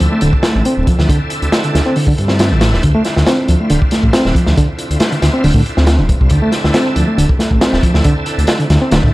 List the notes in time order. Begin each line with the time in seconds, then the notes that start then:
Already playing: D3 C4 E4 A4
0.00 D2 F3, closed hi-hat
0.12 A3
0.21 D1 D3, closed hi-hat
0.33 kick
0.43 A3, snare, closed hi-hat
0.55 A1
0.65 C4, closed hi-hat
0.77 D1
0.87 F3, kick, closed hi-hat
0.99 D2, snare
1.09 D3, kick, closed hi-hat
1.30 closed hi-hat
1.42 D2, closed hi-hat
1.52 snare, closed hi-hat
1.64 D3, closed hi-hat
1.74 D2 D3, snare, closed hi-hat
1.86 C4
1.96 D3, open hi-hat
2.07 D3, kick
2.18 G2, closed hi-hat
2.28 C4, snare
2.39 snare, closed hi-hat
2.51 A1 D3
2.61 snare, closed hi-hat
2.73 D1, snare
2.83 D2 D3 F4, kick, closed hi-hat
2.95 A3
3.04 snare, closed hi-hat
3.16 D2, snare
3.26 C4, snare, closed hi-hat
3.48 D2 F3, closed hi-hat
3.60 A3
3.70 D1 D3, closed hi-hat
3.82 kick
3.91 A3, snare, closed hi-hat
4.03 A1, kick
4.13 C4, snare, closed hi-hat
4.25 D1, snare
4.35 F3, kick, closed hi-hat
4.46 D2, snare
4.57 D3, kick, closed hi-hat
4.79 closed hi-hat
4.90 D2, closed hi-hat
5.00 snare, closed hi-hat
5.12 D3, closed hi-hat
5.22 D2 D3, snare, closed hi-hat
5.34 C4
5.44 D1 D3, open hi-hat
5.54 A2 D3, kick
5.66 closed hi-hat
5.77 D2 C4, snare
5.87 snare, closed hi-hat
5.99 D1 D3
6.09 kick, closed hi-hat
6.21 C2, kick
6.30 D2 D3 A4, kick, closed hi-hat
6.42 A3
6.52 snare, closed hi-hat
6.64 D2, snare
6.74 C4, snare, closed hi-hat
6.96 D2 F3, closed hi-hat
7.07 A3
7.18 D1 D3, closed hi-hat
7.29 kick
7.39 A3, snare, closed hi-hat
7.51 A1, kick
7.61 C4, snare, closed hi-hat
7.73 D1, snare
7.83 F3, kick, closed hi-hat
7.94 D2, snare
8.04 D3, kick, closed hi-hat
8.26 closed hi-hat
8.38 D2, closed hi-hat
8.47 snare, closed hi-hat
8.60 D3, closed hi-hat
8.70 D2 D3, snare, closed hi-hat
8.82 C4
8.91 D1 D3, snare, closed hi-hat
9.03 A2 D3, kick